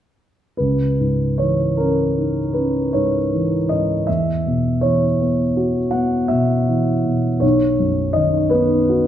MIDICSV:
0, 0, Header, 1, 2, 480
1, 0, Start_track
1, 0, Tempo, 783290
1, 366, Time_signature, 9, 3, 24, 8
1, 1326, Tempo, 761421
1, 2766, Tempo, 741656
1, 5759, End_track
2, 0, Start_track
2, 0, Title_t, "Grand piano"
2, 0, Program_c, 0, 0
2, 351, Note_on_c, 0, 71, 42
2, 367, Note_on_c, 0, 37, 27
2, 471, Control_c, 0, 64, 127
2, 611, Note_on_c, 0, 44, 23
2, 843, Note_off_c, 0, 71, 0
2, 846, Note_on_c, 0, 73, 42
2, 858, Note_on_c, 0, 52, 23
2, 997, Note_off_c, 0, 44, 0
2, 1087, Note_on_c, 0, 70, 47
2, 1088, Note_off_c, 0, 73, 0
2, 1100, Note_on_c, 0, 61, 24
2, 1236, Note_off_c, 0, 52, 0
2, 1337, Note_on_c, 0, 63, 22
2, 1474, Note_off_c, 0, 61, 0
2, 1560, Note_on_c, 0, 71, 38
2, 1562, Note_off_c, 0, 70, 0
2, 1574, Note_on_c, 0, 61, 25
2, 1713, Note_off_c, 0, 63, 0
2, 1801, Note_off_c, 0, 71, 0
2, 1809, Note_on_c, 0, 73, 43
2, 1819, Note_on_c, 0, 44, 22
2, 1954, Note_off_c, 0, 61, 0
2, 2063, Note_on_c, 0, 52, 24
2, 2200, Note_off_c, 0, 44, 0
2, 2289, Note_on_c, 0, 75, 48
2, 2291, Note_off_c, 0, 73, 0
2, 2302, Note_on_c, 0, 44, 24
2, 2441, Note_off_c, 0, 52, 0
2, 2504, Note_off_c, 0, 37, 0
2, 2526, Note_on_c, 0, 76, 43
2, 2529, Note_off_c, 0, 75, 0
2, 2535, Note_off_c, 0, 44, 0
2, 2538, Note_on_c, 0, 40, 25
2, 2539, Control_c, 0, 64, 0
2, 2663, Control_c, 0, 64, 127
2, 2774, Note_on_c, 0, 47, 24
2, 3002, Note_on_c, 0, 73, 50
2, 3004, Note_off_c, 0, 76, 0
2, 3018, Note_on_c, 0, 52, 22
2, 3152, Note_off_c, 0, 47, 0
2, 3255, Note_on_c, 0, 59, 27
2, 3391, Note_off_c, 0, 52, 0
2, 3491, Note_on_c, 0, 66, 25
2, 3629, Note_off_c, 0, 59, 0
2, 3711, Note_on_c, 0, 78, 50
2, 3718, Note_off_c, 0, 73, 0
2, 3720, Note_on_c, 0, 59, 28
2, 3872, Note_off_c, 0, 66, 0
2, 3953, Note_on_c, 0, 76, 52
2, 3960, Note_off_c, 0, 78, 0
2, 3967, Note_on_c, 0, 47, 25
2, 4113, Note_off_c, 0, 59, 0
2, 4209, Note_on_c, 0, 52, 28
2, 4358, Note_off_c, 0, 47, 0
2, 4450, Note_on_c, 0, 47, 28
2, 4597, Note_off_c, 0, 52, 0
2, 4674, Note_off_c, 0, 40, 0
2, 4677, Note_on_c, 0, 73, 45
2, 4688, Note_on_c, 0, 35, 30
2, 4689, Note_off_c, 0, 76, 0
2, 4693, Note_off_c, 0, 47, 0
2, 4704, Control_c, 0, 64, 0
2, 4789, Control_c, 0, 64, 127
2, 4929, Note_on_c, 0, 42, 26
2, 5150, Note_on_c, 0, 75, 54
2, 5162, Note_off_c, 0, 73, 0
2, 5166, Note_on_c, 0, 51, 28
2, 5309, Note_off_c, 0, 42, 0
2, 5387, Note_on_c, 0, 71, 56
2, 5395, Note_off_c, 0, 75, 0
2, 5404, Note_on_c, 0, 59, 31
2, 5545, Note_off_c, 0, 51, 0
2, 5642, Note_on_c, 0, 66, 25
2, 5759, Note_off_c, 0, 35, 0
2, 5759, Note_off_c, 0, 59, 0
2, 5759, Note_off_c, 0, 66, 0
2, 5759, Note_off_c, 0, 71, 0
2, 5759, End_track
0, 0, End_of_file